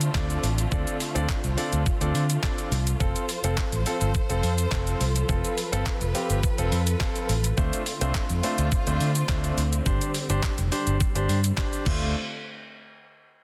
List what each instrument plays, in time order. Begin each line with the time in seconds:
Already playing: string section D3 A3 C4 F4
0.01 closed hi-hat, shaker
0.14 fingered electric bass D2, grand piano C4 D4 F4 A4 D5, kick, clap, shaker
0.30 closed hi-hat, shaker
0.43 fingered electric bass A1, open hi-hat, shaker
0.58 closed hi-hat, shaker
0.72 fingered electric bass D2, grand piano C4 D4 F4 A4 D5, kick, shaker
0.87 closed hi-hat, shaker
1.00 open hi-hat, shaker
1.15 fingered electric bass D2, grand piano C4 D4 F4 A4 D5, closed hi-hat, shaker
1.29 kick, clap, shaker
1.44 fingered electric bass C2, closed hi-hat, shaker
1.57 grand piano C4 D4 F4 A4 D5, open hi-hat, shaker
1.73 fingered electric bass D2, closed hi-hat, shaker
1.86 kick, shaker
2.01 fingered electric bass D2, grand piano C4 D4 F4 A4 D5, closed hi-hat, shaker
2.14 fingered electric bass D3, open hi-hat, shaker
2.30 closed hi-hat, shaker
2.43 grand piano C4 D4 F4 A4 D5, kick, clap, shaker
2.58 closed hi-hat, shaker
2.72 fingered electric bass C2, open hi-hat, shaker
2.87 closed hi-hat, shaker
3.00 fingered electric bass F1, string section F3 A4 C5, grand piano C4 F4 A4, kick, shaker
3.16 closed hi-hat, shaker
3.29 open hi-hat, shaker
3.44 fingered electric bass F1, grand piano C4 F4 A4, closed hi-hat, shaker
3.57 kick, clap, shaker
3.72 fingered electric bass A1, closed hi-hat, shaker
3.86 grand piano C4 F4 A4, open hi-hat, shaker
4.01 fingered electric bass G1, closed hi-hat, shaker
4.15 kick, shaker
4.29 fingered electric bass F1, grand piano C4 F4 A4, closed hi-hat, shaker
4.43 fingered electric bass F2, open hi-hat, shaker
4.58 closed hi-hat, shaker
4.71 fingered electric bass F1, grand piano C4 F4 A4, kick, clap, shaker
4.87 closed hi-hat, shaker
5.01 fingered electric bass C2, open hi-hat, shaker
5.16 closed hi-hat, shaker
5.29 fingered electric bass F1, grand piano C4 F4 A4, string section B4, kick, shaker
5.45 closed hi-hat, shaker
5.58 open hi-hat, shaker
5.72 fingered electric bass G1, grand piano C4 F4 A4, closed hi-hat, shaker
5.86 kick, clap, shaker
6.01 fingered electric bass F1, closed hi-hat, shaker
6.15 grand piano C4 F4 G4, open hi-hat, shaker
6.30 fingered electric bass G1, closed hi-hat, shaker
6.43 kick, shaker
6.58 fingered electric bass F1, grand piano C4 F4 A4, closed hi-hat, shaker
6.72 fingered electric bass F2, open hi-hat, shaker
6.87 closed hi-hat, shaker
7.00 grand piano C4 F4 A4, kick, clap, shaker
7.16 closed hi-hat, shaker
7.29 fingered electric bass A1, open hi-hat, shaker
7.44 closed hi-hat, shaker
7.57 fingered electric bass D2, string section D3 A3 C4 F4, grand piano A3 C4 D4 F4 C5, kick, shaker
7.73 closed hi-hat, shaker
7.86 open hi-hat, shaker
8.01 fingered electric bass C2, grand piano A3 C4 D4 F4 C5, closed hi-hat, shaker
8.14 kick, clap, shaker
8.30 fingered electric bass F2, closed hi-hat, shaker
8.43 grand piano A3 C4 D4 F4 C5, open hi-hat, shaker
8.58 fingered electric bass D2, closed hi-hat, shaker
8.72 kick, shaker
8.87 fingered electric bass D2, grand piano A3 C4 D4 F4 C5, closed hi-hat, shaker
9.00 fingered electric bass D3, open hi-hat, shaker
9.15 closed hi-hat, shaker
9.29 fingered electric bass D2, grand piano A3 C4 D4 F4 C5, kick, clap, shaker
9.44 closed hi-hat, shaker
9.57 fingered electric bass D2, open hi-hat, shaker
9.73 closed hi-hat, shaker
9.86 fingered electric bass G1, string section G3, grand piano D4 G4 C5, kick, shaker
10.01 closed hi-hat, shaker
10.14 open hi-hat, shaker
10.30 fingered electric bass G1, grand piano D4 G4 C5, closed hi-hat, shaker
10.43 kick, clap, shaker
10.58 fingered electric bass F1, closed hi-hat, shaker
10.72 grand piano D4 G4 C5, open hi-hat, shaker
10.87 fingered electric bass G1, closed hi-hat, shaker
11.01 kick, shaker
11.15 fingered electric bass G1, grand piano D4 G4 C5, closed hi-hat, shaker
11.29 fingered electric bass G2, open hi-hat, shaker
11.44 closed hi-hat, shaker
11.57 grand piano D4 G4 C5, kick, clap, shaker
11.73 closed hi-hat, shaker
11.86 fingered electric bass D2, string section D3 A3 C4 F4, grand piano A3 D4 F4 C5, kick, clap, crash